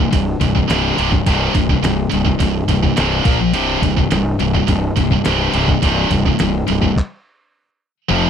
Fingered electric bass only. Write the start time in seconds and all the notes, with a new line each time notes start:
0.13 C1
0.41 C1
0.70 C1
0.99 C1
1.27 C1
1.55 C1
1.83 C1
2.13 C1
2.40 C1
2.68 C1
2.98 C1
3.25 A#1
3.55 C1
3.82 C1
4.12 C1
4.40 C1
4.68 C1
4.97 C1
5.27 C1
5.55 C1
5.83 C1
6.11 C1
6.41 C1
6.70 C1
8.10 F1